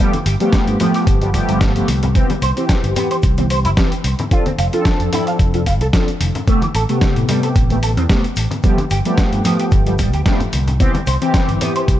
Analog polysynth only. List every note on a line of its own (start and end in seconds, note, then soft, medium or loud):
0.00 0.13 F3 loud
0.00 0.13 A3 medium
0.00 0.13 B3 medium
0.00 0.13 G4 loud
0.40 0.77 F3 medium
0.40 0.77 A3 medium
0.40 0.77 B3 medium
0.40 0.77 G4 loud
0.79 1.18 F3 medium
0.79 1.18 A3 medium
0.79 1.18 B3 medium
0.79 1.18 G4 medium
1.21 1.29 F3 medium
1.21 1.29 A3 medium
1.21 1.29 B3 medium
1.21 1.29 G4 medium
1.34 1.72 F3 medium
1.34 1.72 A3 medium
1.34 1.72 B3 medium
1.34 1.72 G4 loud
1.75 1.88 F3 medium
1.75 1.88 A3 medium
1.75 1.88 B3 medium
1.75 1.88 G4 medium
2.15 2.29 E3 medium
2.15 2.29 B3 medium
2.15 2.29 C4 medium
2.15 2.30 G4 loud
2.56 2.93 E3 medium
2.56 2.93 C4 medium
2.56 2.93 G4 loud
2.96 3.34 E3 medium
2.96 3.35 G4 medium
3.38 3.45 E3 medium
3.38 3.45 B3 medium
3.38 3.46 C4 medium
3.38 3.46 G4 medium
3.77 3.91 E3 medium
3.77 3.92 B3 medium
3.77 3.92 C4 medium
3.77 3.92 G4 loud
4.31 4.45 F3 loud
4.31 4.46 C4 medium
4.31 4.46 D4 medium
4.31 4.46 A4 loud
4.72 5.09 F3 medium
4.72 5.09 C4 medium
4.72 5.09 D4 medium
4.72 5.10 A4 loud
5.12 5.50 F3 medium
5.12 5.50 C4 medium
5.12 5.51 D4 medium
5.12 5.51 A4 medium
5.54 5.61 F3 medium
5.54 5.61 C4 medium
5.54 5.62 D4 medium
5.54 5.62 A4 medium
5.93 6.07 F3 medium
5.93 6.08 C4 medium
5.93 6.08 D4 medium
5.93 6.08 A4 loud
6.47 6.61 C3 loud
6.47 6.62 A3 medium
6.47 6.62 B3 medium
6.47 6.62 G4 loud
6.89 7.25 C3 medium
6.89 7.26 A3 medium
6.89 7.26 B3 medium
6.89 7.26 G4 medium
7.28 7.66 C3 medium
7.28 7.67 A3 medium
7.28 7.67 B3 medium
7.28 7.67 G4 medium
7.70 7.78 C3 medium
7.70 7.78 A3 medium
7.70 7.78 B3 medium
7.70 7.78 G4 medium
8.10 8.24 C3 medium
8.10 8.24 A3 medium
8.10 8.24 B3 medium
8.10 8.24 G4 loud
8.63 8.78 F3 loud
8.63 8.78 A3 medium
8.63 8.78 B3 medium
8.63 8.78 G4 loud
9.05 9.42 F3 medium
9.05 9.42 A3 medium
9.05 9.42 B3 medium
9.05 9.42 G4 loud
9.44 9.83 F3 medium
9.44 9.83 A3 medium
9.44 9.83 B3 medium
9.44 9.83 G4 medium
9.86 9.94 F3 medium
9.86 9.94 A3 medium
9.86 9.94 B3 medium
9.86 9.94 G4 medium
10.26 10.40 F3 medium
10.26 10.40 A3 medium
10.26 10.40 B3 medium
10.26 10.40 G4 loud
10.80 10.94 E3 medium
10.80 10.94 B3 medium
10.80 10.94 C4 medium
10.80 10.94 G4 loud
11.21 11.58 E3 medium
11.21 11.58 C4 medium
11.21 11.58 G4 loud
11.61 11.99 E3 medium
11.61 11.99 G4 medium